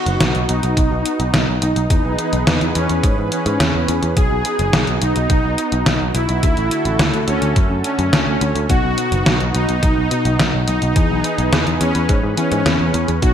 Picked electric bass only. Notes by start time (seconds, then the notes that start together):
0.06 F#1
0.21 B1
0.35 B1
0.49 B1
0.63 B1
0.77 B1
0.91 B1
1.20 B1
1.34 B1
1.48 B1
1.62 B1
1.76 B1
1.90 E2
2.05 B1
2.33 B1
2.47 E2
2.61 E2
2.76 E2
2.90 E2
3.04 G#2
3.18 G#2
3.46 G#2
3.60 E2
3.74 E2
3.88 E2
4.03 E2
4.17 B1
4.31 B1
4.59 F#1
4.73 B1
4.88 B1
5.02 B1
5.16 B1
5.30 B1
5.44 B1
5.72 B1
5.86 B1
6.01 B1
6.15 B1
6.29 B1
6.43 D2
6.57 A1
6.85 A1
7.00 D2
7.14 D2
7.28 D2
7.42 D2
7.56 F#2
7.71 F#2
7.99 F#2
8.13 D2
8.27 D2
8.41 D2
8.55 D2
8.70 B1
8.84 B1
9.12 F#1
9.26 B1
9.40 B1
9.55 B1
9.69 B1
9.83 B1
9.97 B1
10.25 B1
10.39 B1
10.54 B1
10.68 B1
10.82 B1
10.96 E2
11.10 B1
11.38 B1
11.53 E2
11.67 E2
11.81 E2
11.95 E2
12.09 G#2
12.23 G#2
12.52 G#2
12.66 E2
12.80 E2
12.94 E2
13.08 E2
13.23 B1